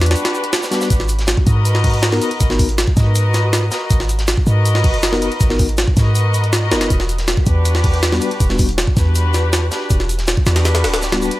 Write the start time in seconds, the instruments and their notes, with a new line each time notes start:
Already playing: 808-style bass E2, string section D4 F#4 G4 B4
0.01 snare, closed hi-hat
0.06 closed hi-hat
0.11 snare, closed hi-hat
0.16 closed hi-hat, shaker
0.25 snare, closed hi-hat
0.34 shaker
0.44 closed hi-hat
0.53 snare, closed hi-hat, shaker
0.62 snare, shaker
0.71 tine electric piano G3 B3 D4 F#4, string section D4 F#4 G4 B4, snare, closed hi-hat, shaker
0.81 snare, shaker
0.90 808-style bass G#1, kick, closed hi-hat, shaker
1.00 snare
1.08 closed hi-hat, shaker
1.19 snare, closed hi-hat
1.27 snare, closed hi-hat, shaker
1.37 kick
1.47 808-style bass G#2, string section F#4 A#4 B4 D#5, kick, closed hi-hat, shaker
1.65 closed hi-hat, shaker
1.75 snare
1.84 kick, closed hi-hat, open hi-hat
1.94 closed hi-hat
2.02 snare, closed hi-hat, shaker
2.12 tine electric piano B3 D#4 F#4 A#4, snare
2.22 string section F#4 A#4 B4 D#5, closed hi-hat, shaker
2.31 closed hi-hat
2.40 808-style bass G#1, kick, closed hi-hat, shaker
2.50 tine electric piano B3 D#4 F#4 A#4, snare
2.59 kick, open hi-hat, shaker
2.69 closed hi-hat
2.78 snare, closed hi-hat, shaker
2.87 kick
2.97 808-style bass G#2, string section F#4 A#4 B4 D#5, kick, snare, closed hi-hat, shaker
3.15 closed hi-hat, shaker
3.34 snare, closed hi-hat, shaker
3.53 snare, closed hi-hat, shaker
3.71 string section F#4 A#4 B4 D#5, snare, closed hi-hat, shaker
3.90 808-style bass G#1, kick, closed hi-hat, shaker
4.00 snare
4.09 closed hi-hat, shaker
4.19 snare, closed hi-hat
4.27 snare, closed hi-hat, shaker
4.37 kick
4.46 808-style bass G#2, string section F#4 A#4 B4 D#5, shaker
4.65 closed hi-hat, shaker
4.75 snare
4.84 808-style bass F#1, kick, closed hi-hat, open hi-hat
4.94 closed hi-hat
5.02 snare, closed hi-hat, shaker
5.12 tine electric piano B3 D#4 F#4 A#4, snare
5.21 string section F#4 A#4 B4 D#5, closed hi-hat, shaker
5.32 closed hi-hat
5.40 808-style bass G#1, kick, closed hi-hat, shaker
5.50 tine electric piano B3 D#4 F#4 A#4, snare
5.59 kick, open hi-hat, shaker
5.69 closed hi-hat
5.77 snare, closed hi-hat, shaker
5.88 kick
5.97 808-style bass G#2, string section F#4 A#4 B4 D#5, kick, snare, closed hi-hat, shaker
6.15 closed hi-hat, shaker
6.34 closed hi-hat, shaker
6.44 closed hi-hat
6.53 snare, closed hi-hat, shaker
6.62 string section F#4 A#4 B4 D#5
6.72 808-style bass F#1, tine electric piano B3 D#4 F#4 A#4, snare, closed hi-hat, shaker
6.81 snare, closed hi-hat
6.90 808-style bass E1, kick, closed hi-hat, shaker
7.00 snare
7.09 closed hi-hat, shaker
7.18 snare, closed hi-hat
7.28 snare, closed hi-hat, shaker
7.37 kick
7.46 808-style bass E2, string section D4 F#4 G4 B4, kick, closed hi-hat, shaker
7.65 closed hi-hat, shaker
7.75 snare
7.84 kick, closed hi-hat, open hi-hat
7.94 closed hi-hat
8.03 snare, closed hi-hat, shaker
8.12 tine electric piano G3 B3 D4 F#4, snare
8.21 string section D4 F#4 G4 B4, closed hi-hat, shaker
8.31 closed hi-hat
8.40 808-style bass E1, kick, closed hi-hat, shaker
8.49 tine electric piano G3 B3 D4 F#4, snare
8.59 kick, open hi-hat, shaker
8.69 closed hi-hat
8.78 snare, closed hi-hat, shaker
8.87 kick
8.96 808-style bass E2, string section D4 F#4 G4 B4, kick, snare, closed hi-hat, shaker
9.15 closed hi-hat, shaker
9.34 snare, closed hi-hat, shaker
9.53 snare, closed hi-hat, shaker
9.71 string section D4 F#4 G4 B4, snare, closed hi-hat, shaker
9.90 808-style bass E1, kick, closed hi-hat, shaker
10.00 snare
10.09 closed hi-hat, shaker
10.18 snare, closed hi-hat
10.27 snare, closed hi-hat, shaker
10.37 kick
10.46 808-style bass E2, string section D4 F#4 G4 B4, snare, closed hi-hat, shaker
10.56 snare, closed hi-hat
10.65 snare, closed hi-hat, shaker
10.75 snare, closed hi-hat
10.84 808-style bass D1, snare, closed hi-hat, open hi-hat
10.94 snare, closed hi-hat
11.02 snare, closed hi-hat, shaker
11.12 tine electric piano G3 B3 D4 F#4, snare, closed hi-hat
11.21 string section D4 F#4 G4 B4, shaker
11.31 closed hi-hat